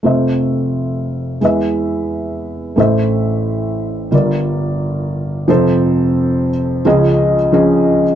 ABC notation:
X:1
M:4/4
L:1/16
Q:1/4=88
K:F
V:1 name="Felt piano"
[A,Fce]8 [^G,E=Be]8 | [A,Ece]8 [G,FBd]8 | [F,CAc]6 z2 [F,_D_A_e]3 z [F,DAe]3 z |]
V:2 name="Felt piano" clef=bass
[F,,,F,,]8 [E,,E,]8 | [A,,,A,,]8 [G,,,G,,]8 | [F,,,F,,]8 [_D,,_D,]8 |]